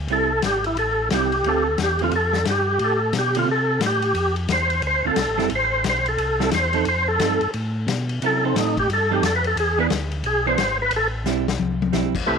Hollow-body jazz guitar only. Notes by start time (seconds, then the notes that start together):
0.10 G3 C4 E4
1.11 G3 C4 E4
1.46 D3 A3 C4 F4
2.01 D3 A3 C4 F4
3.36 D3 A3 C4 F4
5.05 D3 A3 C4 F4
5.37 G3 C4 E4
6.39 G3 C4 E4
6.73 F3 C4 D#4 A4
7.20 F3 C4 D#4 A4
8.23 F#3 C#4 E4 A#4
8.44 F3 C4 D#4 A4
9.11 F3 C4 D#4 A4
9.78 E3 B3 D4 G#4
10.46 E3 B3 D4 G#4
11.26 G3 C4 E4
11.92 G3 C4 E4